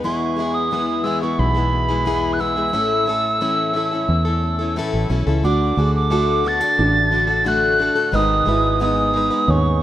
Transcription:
0.03 fingered electric bass E1, steel-string acoustic guitar E2 E3 G#3 B3 E4 G#4, tin whistle C#6
0.36 steel-string acoustic guitar G#3 B3 E4 G#4
0.54 tin whistle D#6
0.71 steel-string acoustic guitar E2 E3 G#3 B3 E4 G#4
1.04 steel-string acoustic guitar G#3 B3 E4 G#4, tin whistle E6
1.21 steel-string acoustic guitar G#3 B3 E4 G#4, tin whistle C#6
1.39 fingered electric bass B1, steel-string acoustic guitar B2, tin whistle B5
1.54 steel-string acoustic guitar G#3 B3 E4 G#4
1.73 steel-string acoustic guitar B3
1.89 steel-string acoustic guitar G#3 B3 E4 G#4
2.05 steel-string acoustic guitar E2 E3 G#3 B3 E4 G#4
2.33 tin whistle F#6
2.39 steel-string acoustic guitar G#3 B3 E4 G#4, tin whistle E6
2.56 steel-string acoustic guitar G#3 B3 E4 G#4
2.72 fingered electric bass A1, steel-string acoustic guitar A2 A3 C#4 E4 A4
3.06 steel-string acoustic guitar A3 C#4 E4 A4
3.41 steel-string acoustic guitar A2 E3 A3 C#4 E4 A4
3.74 steel-string acoustic guitar A3 C#4 E4 A4
3.91 steel-string acoustic guitar C#4 E4 A4
4.09 fingered electric bass E2, steel-string acoustic guitar E2
4.25 steel-string acoustic guitar C#4 E4 A4
4.44 steel-string acoustic guitar A3
4.59 steel-string acoustic guitar C#4 E4 A4
4.76 steel-string acoustic guitar A2 E3 A3 C#4 E4 A4
4.94 fingered electric bass A1
5.09 fingered electric bass B1, steel-string acoustic guitar A3 C#4 E4 A4
5.27 fingered electric bass C#2, steel-string acoustic guitar C#4 E4 A4
5.44 fingered electric bass D2, steel-string acoustic guitar D3 D4 F#4 A4, upright piano F#4, tin whistle D6
5.76 fingered electric bass D2, steel-string acoustic guitar D3 D4 F#4 A4, upright piano G#4
5.96 tin whistle D6
6.10 steel-string acoustic guitar D3 A3 D4 F#4 A4, upright piano F#4
6.44 steel-string acoustic guitar D3 B3 D4 F#4 A4, tin whistle A6
6.60 steel-string acoustic guitar D4 F#4 A4
6.78 fingered electric bass A1, steel-string acoustic guitar A2, upright piano D4
7.11 steel-string acoustic guitar D3 D4 F#4 A4
7.27 steel-string acoustic guitar D4 F#4 A4
7.44 steel-string acoustic guitar D3 A3 D4 F#4 A4, tin whistle F#6
7.78 steel-string acoustic guitar D3 D4 F#4 A4
7.96 steel-string acoustic guitar D4 F#4 A4
8.12 fingered electric bass G#1, steel-string acoustic guitar G#2 D#3 G#3 B3 D#4 G#4 B4, upright piano D#4, tin whistle D#6
8.45 fingered electric bass G#1, steel-string acoustic guitar G#3 B3 D#4 B4, upright piano E4
8.80 steel-string acoustic guitar G#2 D#3 G#3 B3 D#4 G#4 B4, upright piano D#4, tin whistle D#6
9.14 steel-string acoustic guitar G#3 B3 D#4 B4
9.30 steel-string acoustic guitar G#3 B3 D#4 B4
9.47 fingered electric bass D#2, steel-string acoustic guitar G#2, upright piano C#4, tin whistle C#6

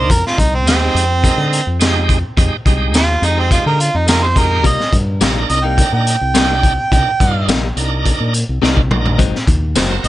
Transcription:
Already playing: harmonica C5
0.10 fingered electric bass F2, harmonica A#4, kick, closed hi-hat
0.27 harmonica F4, snare
0.38 fingered electric bass C2, harmonica D#4, kick, closed hi-hat
0.54 harmonica C4
0.66 fingered electric bass D#2, tonewheel organ G#3 D#4 G4, harmonica C4, snare, closed hi-hat, tambourine
0.95 fingered electric bass F2, closed hi-hat
1.22 tonewheel organ G#3 D#4 A#4, kick, closed hi-hat
1.37 fingered electric bass D3
1.53 closed hi-hat
1.67 fingered electric bass F2
1.80 tonewheel organ G#3 D#4 G4, snare, closed hi-hat, tambourine
2.09 kick, closed hi-hat
2.37 fingered electric bass F2, tonewheel organ G#3 D#4 G4, kick, closed hi-hat
2.66 fingered electric bass C2, tonewheel organ G#3 D#4 G4, kick, closed hi-hat
2.93 fingered electric bass D#2, harmonica F4, snare, closed hi-hat, tambourine
3.22 fingered electric bass F2, tonewheel organ G#3 D#4 G4, harmonica D#4, closed hi-hat
3.40 harmonica C4
3.51 harmonica F4, kick, closed hi-hat
3.66 fingered electric bass D3, harmonica A#4
3.80 harmonica F4, closed hi-hat
3.94 fingered electric bass F2, harmonica D#4
4.07 tonewheel organ G#3 D#4 F4, harmonica A#4, snare, closed hi-hat, tambourine
4.23 harmonica C5
4.34 tonewheel organ G#3 D#4 G4, harmonica A#4, kick, closed hi-hat
4.64 fingered electric bass C2, clean electric guitar C3 G3 A#3 D#4, harmonica D#5, kick, closed hi-hat
4.80 snare
4.93 fingered electric bass G2, kick, closed hi-hat
5.20 fingered electric bass A#1, clean electric guitar C3 G3 A#3 D#4, tonewheel organ D4 D#4 A#4, snare, closed hi-hat, tambourine
5.49 fingered electric bass C2, harmonica D#5, closed hi-hat
5.64 clean electric guitar G3 A#3 D#4, harmonica G5
5.77 tonewheel organ D4 D#4 A#4, kick, closed hi-hat
5.93 fingered electric bass A#2, harmonica G5
6.07 closed hi-hat
6.21 fingered electric bass C2
6.34 clean electric guitar C3 G3 A#3 D#4, tonewheel organ D4 D#4 G4, snare, closed hi-hat, tambourine
6.63 kick, closed hi-hat
6.92 fingered electric bass C2, tonewheel organ D4 D#4 A#4, harmonica G5, kick, closed hi-hat
7.20 fingered electric bass G2, tonewheel organ D4 D#4 F4, kick, closed hi-hat
7.48 fingered electric bass A#1, clean electric guitar C3 G3 A#3 D#4, snare, closed hi-hat, tambourine
7.76 fingered electric bass C2, tonewheel organ D4 D#4 A#4, closed hi-hat
8.05 kick, closed hi-hat
8.20 fingered electric bass A#2
8.34 closed hi-hat
8.49 fingered electric bass C2
8.62 fingered electric bass C2, clean electric guitar C3 G3 A#3 D#4, tonewheel organ D4 D#4 F4, snare
8.77 kick
8.91 fingered electric bass A#1, tonewheel organ D4 D#4 A#4, mid tom
9.06 floor tom
9.18 fingered electric bass G#1, clean electric guitar G#2 F#3 C4 D#4, kick, closed hi-hat
9.35 snare
9.47 fingered electric bass D#2, kick, closed hi-hat
9.75 fingered electric bass F#1, clean electric guitar G#2 F#3 C4 D#4, tonewheel organ C4 F#4 A#4, snare, closed hi-hat, tambourine
10.04 fingered electric bass G#1, closed hi-hat

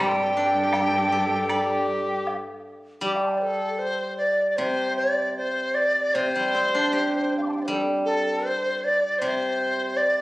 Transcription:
Already playing: guzheng C3 G3
0.00 cello G2, dizi G5, high woodblock
0.07 erhu A4
0.15 erhu G4
0.23 erhu A4
0.32 erhu G4
0.37 guzheng D4, erhu A4
0.46 erhu G4
0.52 erhu A4
0.64 erhu G4
0.71 guzheng G4, erhu A4, high woodblock, low woodblock
0.80 erhu G4
0.88 erhu A4
0.97 erhu G4
1.04 erhu A4
1.11 erhu G4, guzheng A4
1.18 erhu A4
1.26 erhu G4
1.35 erhu A4
1.43 erhu G4
1.49 erhu A4, guzheng D5, high woodblock
1.61 erhu G4
2.27 low woodblock
3.01 guzheng G3, dizi G4
3.15 dizi F5 D6
3.23 dizi A5 C6
3.28 dizi G5
3.33 dizi D5 F5
3.39 dizi A4 C5
3.78 dizi C5
4.17 dizi D5
4.50 dizi D5
4.56 guzheng C3, dizi C5
4.97 dizi D5
5.36 dizi C5
5.74 dizi D5
6.14 guzheng C3, dizi C5
6.36 guzheng G3
6.55 guzheng C4
6.75 guzheng D4
6.93 guzheng G4
7.37 dizi F5
7.42 dizi C6 D6
7.48 dizi G5 A5
7.56 dizi F5
7.61 dizi C5 D5
7.67 guzheng G3, dizi G4 A4
8.05 dizi A4
8.45 dizi C5
8.83 dizi D5
9.18 guzheng C3, dizi C5
9.96 dizi D5

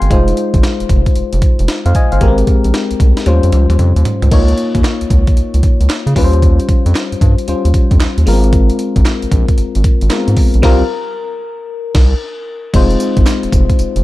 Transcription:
Already playing: fm electric piano C4 G4 A#4 F5 G5 G#5 C6
0.02 analog synth bass G1, closed hi-hat
0.10 analog synth bass F1, fm electric piano G#3 D#4 F4 C5, kick, closed hi-hat
0.28 closed hi-hat
0.37 closed hi-hat
0.54 analog synth bass G#1, kick, closed hi-hat
0.63 snare, closed hi-hat
0.80 analog synth bass F1, closed hi-hat
0.89 analog synth bass F1, kick, closed hi-hat
1.06 kick, closed hi-hat
1.16 analog synth bass F1, closed hi-hat
1.33 analog synth bass F1, closed hi-hat
1.42 kick, closed hi-hat
1.59 analog synth bass F1, closed hi-hat
1.68 snare, closed hi-hat
1.86 analog synth bass F2, fm electric piano C5 F5, closed hi-hat
1.95 fm electric piano D#5 G#5, kick, closed hi-hat
2.12 analog synth bass G1, fm electric piano C5 F5, closed hi-hat
2.21 analog synth bass G#1, fm electric piano G#3 B3 G4 A#4, kick, closed hi-hat
2.28 fm electric piano C4
2.38 closed hi-hat
2.47 kick, closed hi-hat
2.64 analog synth bass A#1, closed hi-hat
2.74 snare, closed hi-hat
2.91 analog synth bass C2, closed hi-hat
3.00 analog synth bass C2, kick, closed hi-hat
3.17 snare, closed hi-hat
3.26 analog synth bass D#2, fm electric piano G3 C#4 F4 C5, closed hi-hat, high tom
3.43 analog synth bass F2, closed hi-hat
3.52 analog synth bass C#2, closed hi-hat, mid tom
3.69 analog synth bass D#2, closed hi-hat, mid tom
3.79 analog synth bass F2, closed hi-hat, mid tom
3.96 analog synth bass D#2, closed hi-hat
4.05 closed hi-hat, floor tom
4.22 analog synth bass C#2, closed hi-hat, floor tom
4.31 analog synth bass C#2, fm electric piano A#3 D#4 F4 C#5, kick, closed hi-hat, crash
4.48 closed hi-hat
4.58 closed hi-hat
4.75 analog synth bass D#2, kick, closed hi-hat
4.84 snare, clap, closed hi-hat
5.01 analog synth bass C#2, closed hi-hat
5.10 analog synth bass C#2, kick, closed hi-hat
5.27 kick, closed hi-hat
5.37 analog synth bass C#2, closed hi-hat
5.54 analog synth bass C#2, closed hi-hat
5.63 kick, closed hi-hat
5.80 analog synth bass C#2, closed hi-hat
5.90 snare, clap, closed hi-hat
6.06 analog synth bass C#3, closed hi-hat
6.15 analog synth bass D#2, fm electric piano G3 C#4 F4 B4, kick, open hi-hat
6.24 fm electric piano C5
6.33 closed hi-hat
6.42 kick, closed hi-hat
6.60 closed hi-hat
6.69 kick, closed hi-hat
6.86 analog synth bass F2, closed hi-hat
6.95 snare, clap, closed hi-hat
7.12 analog synth bass G2, closed hi-hat
7.21 analog synth bass G2, kick, closed hi-hat
7.38 closed hi-hat
7.48 analog synth bass D#2, fm electric piano G3 C#4 F4 C5, closed hi-hat
7.65 analog synth bass D#2, closed hi-hat
7.74 kick, closed hi-hat
7.91 analog synth bass F2, kick, closed hi-hat
8.00 analog synth bass D#2, snare, clap, closed hi-hat
8.18 analog synth bass D#2, closed hi-hat
8.26 analog synth bass G#1, fm electric piano G#3 B3 F4 A#4, open hi-hat
8.33 fm electric piano C4
8.44 closed hi-hat
8.53 kick, closed hi-hat
8.70 closed hi-hat
8.79 closed hi-hat
8.96 analog synth bass G#1, kick, closed hi-hat
9.05 snare, clap, closed hi-hat
9.22 analog synth bass A#1, closed hi-hat
9.32 analog synth bass A#1, kick, closed hi-hat
9.48 kick, closed hi-hat
9.58 analog synth bass G#1, closed hi-hat
9.75 analog synth bass G#1, closed hi-hat
9.84 kick, closed hi-hat
10.01 analog synth bass G#1, closed hi-hat
10.10 fm electric piano G#3 B3 F4 A#4, snare, clap, closed hi-hat
10.17 fm electric piano C4
10.28 analog synth bass G#2, closed hi-hat
10.37 kick, open hi-hat
10.54 analog synth bass A#1, closed hi-hat
10.62 analog synth bass C2, fm electric piano G3 C4 F4 A#4, kick, snare, crash
11.95 analog synth bass C2, kick, snare, crash
12.73 analog synth bass F1, fm electric piano G#3 C4 D#4 F4 C5, kick, closed hi-hat, crash
12.91 closed hi-hat
13.00 closed hi-hat, tambourine
13.17 analog synth bass G#1, kick, closed hi-hat
13.26 snare, clap, closed hi-hat, tambourine
13.43 analog synth bass F1, closed hi-hat
13.53 analog synth bass F1, kick, closed hi-hat, tambourine
13.70 kick, closed hi-hat
13.79 analog synth bass F1, closed hi-hat, tambourine
13.96 analog synth bass F1, closed hi-hat

